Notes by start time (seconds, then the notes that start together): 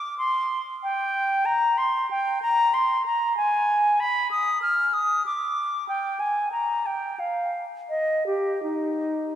Already playing: D6
0.18 C6
0.83 G5
1.46 A#5
1.78 C6
2.11 G5
2.42 A#5
2.74 C6
3.06 A#5
3.37 G#5
4.00 B5
4.31 D#6
4.62 F6
4.93 D#6
5.26 D6
5.89 G5
6.20 G#5
6.52 A#5
6.86 G5
7.20 F5
7.89 D#5
8.26 G4
8.63 D#4